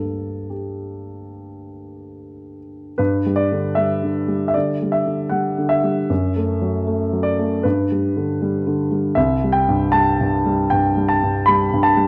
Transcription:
Already playing: G2 G3 A#3 D4 A4
0.50 G4
2.98 G2 B4
3.26 G3
3.36 D5
3.52 D3
3.75 G3 E5
4.03 D3
4.28 G3
4.48 E5
4.54 D3 D5
4.83 G3
4.92 E5
5.06 D3
5.29 G3 F#5
5.58 D3
5.69 E5
5.84 G3
6.10 F#2
6.36 A3
6.62 F#3
6.87 A3
7.13 F#3
7.23 D5
7.39 A3
7.63 G2 B4
7.92 G3
8.17 D3
8.42 G3
8.67 D3
8.92 G3
9.15 C2 E5
9.44 G3
9.53 G5
9.68 G2
9.92 G3 A5
10.21 G2
10.46 G3
10.70 G2 G5
10.97 G3
11.09 A5
11.23 G2
11.46 G3 B5
11.73 G2
11.83 A5
11.97 G3

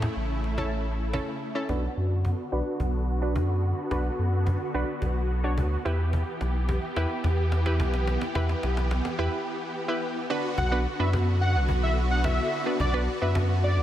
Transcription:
Already playing: C#3 A3 E4
0.02 cajon bass, cajon slap
0.16 A1
0.44 cajon slap
0.58 C#4 E4 A4, cajon bass
1.13 C#4 E4 A4, cajon bass, cajon slap
1.55 C#4 E4 A4
1.69 B1 D3 B3 D4 F#4 B4, cajon bass, cajon slap
1.97 F#2
2.25 cajon bass, cajon slap
2.52 B1 D4 F#4 B4
2.80 B1, cajon bass, cajon slap
3.22 D4 F#4 B4
3.36 F#2, cajon bass, cajon slap
3.91 B1 D4 F#4 B4, cajon bass, cajon slap
4.05 cajon slap
4.19 F#2
4.32 cajon slap
4.46 cajon bass, cajon slap
4.61 cajon slap
4.74 B1 D4 F#4 B4
4.88 cajon slap
5.02 B1, cajon bass, cajon slap
5.16 cajon slap
5.44 D4 F#4 C#5, cajon slap
5.58 D2, cajon bass, cajon slap
5.72 cajon slap
5.85 E2 E3 B3 E4 G4 B4, cajon slap
6.00 cajon slap
6.13 cajon bass, cajon slap
6.27 cajon slap
6.41 B1, cajon slap
6.55 cajon slap
6.69 cajon bass, cajon slap
6.83 cajon slap
6.96 E2 E4 G4 B4, cajon slap
7.10 cajon slap
7.24 E2, cajon bass, cajon slap
7.38 cajon slap
7.52 cajon slap
7.66 E4 G4 B4, cajon slap
7.80 B1, cajon bass, cajon slap
7.94 cajon slap
8.07 cajon slap
8.21 cajon slap
8.35 E2 E4 G4 B4, cajon bass, cajon slap
8.49 cajon slap
8.63 B1, cajon slap
8.77 cajon slap
8.91 cajon slap
9.05 cajon slap
9.19 E2 E4 G4 B4
9.33 cajon slap
9.88 E4 G4 B4
10.30 D3 B3 D4 F#4 B4
10.58 B1 D3 B3 F#4 F#5, cajon bass
10.72 B3 D4 F#4 B4, cajon slap
10.86 cajon slap
10.99 F#2 B3 D4 F#4 B4 E5
11.13 cajon bass, cajon slap
11.27 cajon slap
11.41 F#5, cajon slap
11.55 B1, cajon slap
11.69 cajon bass
11.83 E5, cajon slap
12.11 F#5
12.24 E5, cajon bass, cajon slap
12.38 cajon slap
12.52 cajon slap
12.66 B3 D4 F#4 B4, cajon slap
12.80 B1 D5, cajon bass
12.94 B3 D4 F#4 B4
13.22 F#2 B3 D4 F#4 B4 E5
13.35 cajon bass, cajon slap
13.49 cajon slap
13.63 D5, cajon slap
13.77 B1, cajon slap

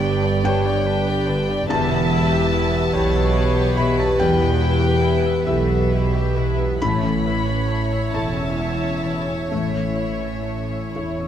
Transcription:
Already playing: G1 G2 D3 B3 D4 G4 D5 G5
0.01 D4 B4 D5
0.23 G4 D5
0.44 D4 G4 B4 C#5 G5
0.65 G4 D5
0.86 D4 B4
1.07 G4 D5
1.27 D3 D4 B4 D5
1.49 D4 G4 D5
1.68 E1 E2 G3 B3 G4 B4 E5 A5
1.90 B2 B3
2.12 E4
2.32 G4
2.52 E4 B4
2.72 B3 E5
2.93 B1 B2 G3 E4 G4 B4 C#5
3.12 B3 E5
3.33 E4 B4
3.54 G4
3.76 B2 E4 B5
3.97 B3 E4 A5
4.19 E1 E2 G3 B4 G5
4.40 B2 B3
4.61 E4
4.81 G4
5.02 E4 B4
5.24 B3 E5
5.46 B1 B2 G3 E4 G4 A4 B4 E5
5.67 B3 E5
5.90 E4 G4 B4
6.14 G4
6.37 B2 E4 B4
6.60 B3 E4
6.81 A1 A2 A3 C#4 E4 A4 C#5 B5
7.05 E3 C#4
7.26 E4 B4
7.48 C#4 A4
7.69 A3 C#5
7.92 C#4 E5
8.13 E1 E2 E4 A4 C#5 E5 A5
8.35 C#4 E5
8.58 A3 C#5
8.81 C#4 A4
9.03 E3 E4
9.27 C#4 E4
9.49 A1 A2 A3 E5
9.53 C#5
9.72 C#4
9.76 E3
9.97 E4
10.22 C#4 A4
10.44 A3
10.49 C#5
10.69 C#4 E5
10.93 E1 E2 E4 A4 C#5
11.17 C#4 E5

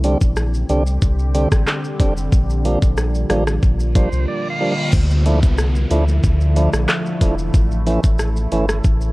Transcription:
Already playing: C2 D3 G3 C4 G4
0.04 D3 G3 C4 D4, closed hi-hat, shaker
0.21 A#1, kick, shaker
0.36 cross-stick, shaker
0.54 shaker
0.69 C2 D3 G3 C4 D4, closed hi-hat, shaker
0.86 shaker
1.02 C2, kick, shaker
1.19 shaker
1.34 D3 G3 C4 D4, closed hi-hat, shaker
1.52 A1, kick, cross-stick, shaker
1.67 cross-stick, clap, shaker
1.84 shaker
2.00 F1 D3 G3 C4 D4, kick, closed hi-hat, shaker
2.17 shaker
2.32 A#1 A#3 F4, kick, shaker
2.50 shaker
2.65 F3 G3 A#3 D4, closed hi-hat, shaker
2.82 A#1, kick, shaker
2.97 cross-stick, shaker
3.15 shaker
3.30 A1 F3 G3 A#3 D4, cross-stick, closed hi-hat, shaker
3.47 cross-stick, shaker
3.63 A#1, kick, reverse cymbal, shaker
3.80 shaker
3.95 F3 G3 A#3 D4 C5, kick, closed hi-hat, shaker
4.12 C2, shaker
4.28 D5
4.50 F5
4.61 F3 G3 A#3 D4
4.72 F5
4.93 D2 D3 F3 A3 E4, kick, crash, downlifter, shaker
5.10 shaker
5.26 F3 A3 D4 E4, closed hi-hat, shaker
5.43 C2, kick, shaker
5.58 cross-stick, shaker
5.75 shaker
5.91 D2 F3 A3 D4 E4, closed hi-hat, shaker
6.08 shaker
6.23 D2, kick, shaker
6.40 shaker
6.56 F3 A3 D4 E4, closed hi-hat, shaker
6.73 A#1, cross-stick, shaker
6.89 cross-stick, clap, shaker
7.06 shaker
7.21 E1 F3 A3 D4 E4, kick, closed hi-hat, shaker
7.38 shaker
7.54 A1 C#3 E3 E4, kick, shaker
7.71 shaker
7.86 E3 A3 C#4 E4, closed hi-hat, shaker
8.04 A1, kick, shaker
8.19 cross-stick, shaker
8.36 shaker
8.52 G1 E3 A3 C#4 E4, closed hi-hat, shaker
8.69 cross-stick, shaker
8.84 A1, kick, shaker
9.01 shaker

